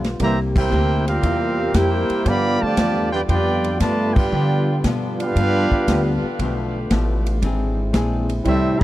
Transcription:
Already playing: B1 D3 G3 B3 F4
0.04 snare, ride
0.19 C2 C3 E3 G3 A#3 E4 G4 C5 E5, kick, ride
0.23 A#5
0.56 A#3 E4 G4 A#4 C5 G5, kick, crash
0.69 D2 C3 G3 A#3 E4, hi-hat pedal
1.08 G3 A#3 C4 F4 G4 A#4 F5, ride
1.22 E2 C3 G3 A#3 E4, kick, ride
1.74 F2 C3 G3 A#3 E4 G4 A#4 C5 G5, kick, snare, hi-hat pedal, ride
2.10 muted upright bass stroke, ride
2.25 G2 D3 F3 B3 D4 F4 G4 D5 F5 B5, kick, ride
2.61 D3 F3 A3 G4 D5 F5 A5, muted upright bass stroke
2.77 E2 G2 F3 B3 D4, kick, snare, hi-hat pedal, ride
3.12 B3 D4 F4 G4 B4 D5 G5
3.28 F2 G2 F3 B3 D4 F4 G4 B4 D5 G5, kick, ride
3.32 B3 D4
3.64 ride
3.79 G2 F3 A3 B3 D4 F4 B4 D5 A5, kick, snare, hi-hat pedal, ride
4.14 B3 D4 F4 G4 B4 D5 G5, kick, crash
4.32 G2 D3 F3 B3 D4
4.84 G2 B2 F3 B3 D4, kick, snare, hi-hat pedal, ride
5.18 B3 D4 F4 G4 B4 F5, ride
5.36 G2 F3 B3, kick, ride
5.41 D4
5.72 muted upright bass stroke, kick
5.87 D2 G2 F3 B3, kick, snare, hi-hat pedal, ride
5.92 D4
6.22 muted upright bass stroke
6.39 B1 B2 F3 A3, kick, ride
6.43 A3 D4
6.91 A1 B2 F3 A3 D4, kick, snare, hi-hat pedal, ride
7.26 ride
7.42 G#1 E3 G#3 C4 D4 E4, kick, ride
7.46 G#4
7.93 A#1 E3 C4 D4 G#4, kick, snare, hi-hat pedal, ride
8.29 ride
8.44 C2 A2 E3 G3 A3 C4 E4 G4 A4 E5, kick, ride
8.48 E4
8.78 E3 G3 B3 E5 G5 B5

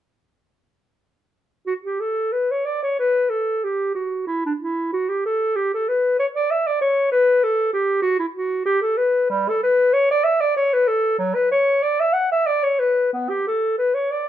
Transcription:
1.67 F#4
1.84 G4
2.00 A4
2.32 B4
2.51 C#5
2.65 D5
2.83 C#5
2.99 B4
3.30 A4
3.64 G4
3.95 F#4
4.27 E4
4.46 D4
4.61 E4
4.93 F#4
5.09 G4
5.26 A4
5.56 G4
5.74 A4
5.89 B4
6.19 C#5
6.36 D5
6.51 E5
6.67 D5
6.81 C#5
7.12 B4
7.44 A4
7.73 G4
8.02 F#4
8.19 E4
8.35 F#4
8.66 G4
8.81 A4
8.97 B4
9.30 G3
9.49 A4
9.63 B4
9.93 C#5
10.11 D5
10.24 E5
10.41 D5
10.56 C#5
10.73 B4
10.88 A4
11.18 F#3
11.35 B4
11.52 C#5
11.83 D5
12.00 E5
12.13 F#5
12.32 E5
12.47 D5
12.63 C#5
12.79 B4
13.13 B3
13.29 G4
13.47 A4
13.78 B4
13.94 C#5
14.11 D5

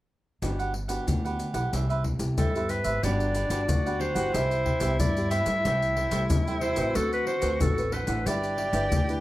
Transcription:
0.42 G1 G3 B3 D4 F#4 G4 B4 F#5, pandeiro, maracas, surdo
0.59 G4 B4 F#5, pandeiro, maracas
0.73 muted cavaquinho stroke, pandeiro
0.88 B3 D4 F#4 G4 B4 F#5, pandeiro, maracas
1.07 D2 D3 D4 G4 B4 F#5, pandeiro, maracas, surdo
1.24 B3 D4 F#4 G4 B4 F#5, pandeiro, maracas
1.39 pandeiro, maracas
1.53 B1 B3 E4 G4 B4 F#5, pandeiro, maracas
1.72 C2 C3 G4 B4 C5 E5, pandeiro, maracas, surdo
1.89 B4 C5 E5, pandeiro, maracas
2.04 muted cavaquinho stroke, pandeiro, surdo
2.19 C2 B3 E4 G4, pandeiro, maracas
2.38 G2 G4 A4 B4 C5 E5, pandeiro, maracas, surdo
2.55 B3 E4 G4 B4 C5 E5, pandeiro, maracas
2.69 G4 B4 C5 E5, pandeiro, maracas
2.84 G#1 B4 C5 E5, pandeiro, maracas
3.03 G1 G3 B3 D4 F#4 G4 B4 D5 F#5, pandeiro, maracas, surdo
3.20 pandeiro, maracas
3.34 D4 G4 B4 F#5, pandeiro, maracas
3.50 G1 B3 D4 F#4 G4 B4 F#5, pandeiro, maracas
3.68 D2 D3 F#4, pandeiro, maracas, surdo
3.86 B3 D4 F#4 G4 B4 F#5, pandeiro, maracas
3.99 D4 G4 B4 C5 F#5, pandeiro
4.14 G1 E4 G4 B4 F#5, pandeiro, maracas
4.33 C2 C3 E4 G4 C5 E5, pandeiro, maracas, surdo
4.51 pandeiro, maracas
4.65 G4 B4 C5 E5, pandeiro, surdo
4.80 C2 B3 E4 G4 B4 C5 E5, pandeiro, maracas
4.99 G2 D5, pandeiro, maracas, surdo
5.17 B3 E4 G4, pandeiro, maracas
5.30 G4 B4 C5 E5, pandeiro, maracas
5.46 G2 G3 A3 E4 B4 C5 E5, pandeiro, maracas
5.65 C2 C3 E4 A4 C5 E5 G5, pandeiro, maracas, surdo
5.82 pandeiro, maracas
5.96 A4 C5 E5 G5, pandeiro
6.11 C2 G3 A3 E4 A4 C5 E5 G5, pandeiro, maracas
6.30 E2 C3, pandeiro, maracas, surdo
6.47 G3 A3 E4 C5 E5 G5, pandeiro, maracas
6.61 A4 C5 E5 G5, pandeiro
6.76 A1 C4 F#4 B4 C5 E5 G5, pandeiro, maracas
6.95 D2 D3 D4 F#4 A4 C5 F#5, pandeiro, maracas, surdo
7.13 B4, pandeiro, maracas
7.27 D4 A4 C5 F#5, pandeiro
7.42 D2 C4 D4 F#4 A4 B4 C5 F#5, pandeiro, maracas
7.61 A1 A2 A4, pandeiro, maracas, surdo
7.78 C4 F#4 B4, pandeiro, maracas
7.92 D4 A4 B4 C5 F#5, pandeiro
8.07 A1 D4 E4 A4 B4 C5 F#5, pandeiro, maracas
8.26 G1 G3 E4 G4 B4 D5, pandeiro, maracas, surdo
8.44 pandeiro, maracas
8.57 E4 G4 B4 D5, pandeiro
8.73 G1 D4 E4 G4 B4 D5, pandeiro, maracas
8.92 D2, pandeiro, maracas, surdo
9.09 D4 E4 G4 B4 D5, pandeiro, maracas

